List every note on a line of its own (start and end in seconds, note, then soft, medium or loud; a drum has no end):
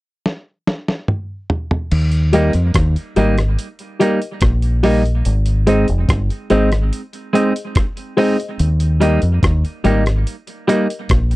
0.26 snare medium
0.67 snare medium
0.88 snare medium
1.08 mid tom medium
1.50 floor tom loud
1.71 floor tom medium
1.91 2.51 D#2 loud
1.91 crash medium
2.12 closed hi-hat medium
2.33 2.51 G3 medium
2.33 2.52 A#3 medium
2.33 2.52 D#4 medium
2.33 2.50 G4 medium
2.33 2.50 A#4 medium
2.33 2.50 D#5 loud
2.33 closed hi-hat medium
2.53 2.74 F2 medium
2.53 closed hi-hat medium
2.74 2.95 D#2 medium
2.74 kick loud
2.74 cross-stick loud
2.74 closed hi-hat medium
2.96 closed hi-hat soft
3.16 3.56 G#1 medium
3.16 3.35 G3 medium
3.16 3.36 A#3 medium
3.16 3.36 D#4 medium
3.16 3.33 G4 medium
3.16 3.34 A#4 medium
3.16 3.34 D#5 loud
3.16 closed hi-hat medium
3.38 cross-stick medium
3.38 closed hi-hat soft
3.59 closed hi-hat medium
3.79 closed hi-hat soft
3.99 4.18 G3 medium
3.99 4.19 A#3 medium
3.99 4.19 D#4 medium
3.99 4.17 G4 medium
3.99 4.17 A#4 medium
3.99 4.17 D#5 loud
3.99 closed hi-hat medium
4.22 closed hi-hat soft
4.41 5.21 A#1 medium
4.41 kick loud
4.41 cross-stick loud
4.41 closed hi-hat medium
4.62 closed hi-hat medium
4.83 5.02 G3 medium
4.83 5.02 A#3 medium
4.83 5.03 D#4 medium
4.83 5.00 G4 medium
4.83 5.01 A#4 medium
4.83 5.01 D#5 loud
4.83 open hi-hat medium
5.06 closed hi-hat soft
5.25 5.85 G#1 loud
5.25 closed hi-hat medium
5.46 closed hi-hat medium
5.67 5.85 G#3 medium
5.67 5.86 C4 medium
5.67 5.86 D#4 medium
5.67 5.84 G#4 medium
5.67 5.84 C5 medium
5.67 5.84 D#5 loud
5.67 closed hi-hat medium
5.88 6.08 F1 medium
5.88 closed hi-hat soft
6.09 6.29 G1 medium
6.09 kick loud
6.09 cross-stick loud
6.09 closed hi-hat medium
6.30 closed hi-hat medium
6.50 6.90 G#1 medium
6.50 6.69 G#3 medium
6.50 6.69 C4 medium
6.50 6.69 D#4 medium
6.50 6.67 G#4 medium
6.50 6.68 C5 medium
6.50 6.68 D#5 loud
6.50 closed hi-hat medium
6.72 cross-stick medium
6.72 closed hi-hat medium
6.93 closed hi-hat medium
7.13 closed hi-hat soft
7.33 7.52 G#3 medium
7.33 7.52 C4 medium
7.33 7.53 D#4 medium
7.33 7.51 G#4 medium
7.33 7.51 C5 medium
7.33 7.51 D#5 medium
7.33 closed hi-hat medium
7.56 closed hi-hat medium
7.75 kick loud
7.75 cross-stick loud
7.75 closed hi-hat medium
7.97 closed hi-hat medium
8.17 8.36 G#3 medium
8.17 8.36 C4 medium
8.17 8.36 D#4 medium
8.17 8.34 G#4 loud
8.17 8.34 C5 medium
8.17 8.35 D#5 loud
8.17 open hi-hat medium
8.39 8.47 C5 soft
8.39 8.47 D#5 soft
8.39 closed hi-hat medium
8.59 9.18 D#2 medium
8.59 closed hi-hat medium
8.80 closed hi-hat medium
9.00 9.19 G3 medium
9.00 9.20 A#3 medium
9.00 9.20 D#4 medium
9.00 9.18 G4 medium
9.00 9.18 A#4 medium
9.00 9.18 D#5 loud
9.00 closed hi-hat medium
9.22 9.42 F2 medium
9.22 closed hi-hat soft
9.43 9.63 D#2 medium
9.43 kick loud
9.43 cross-stick loud
9.43 closed hi-hat medium
9.65 closed hi-hat medium
9.84 10.24 G#1 medium
9.84 10.03 G3 medium
9.84 10.03 A#3 medium
9.84 10.04 D#4 medium
9.84 10.01 G4 medium
9.84 10.01 A#4 medium
9.84 10.02 D#5 loud
9.84 closed hi-hat medium
10.06 cross-stick medium
10.06 closed hi-hat medium
10.27 closed hi-hat medium
10.47 closed hi-hat soft
10.68 10.86 G3 medium
10.68 10.86 A#3 medium
10.68 10.87 D#4 loud
10.68 10.85 G4 medium
10.68 10.85 A#4 medium
10.68 10.85 D#5 loud
10.68 closed hi-hat medium
10.90 closed hi-hat medium
11.09 11.36 A#1 medium
11.09 kick loud
11.09 cross-stick loud
11.09 closed hi-hat medium
11.31 closed hi-hat medium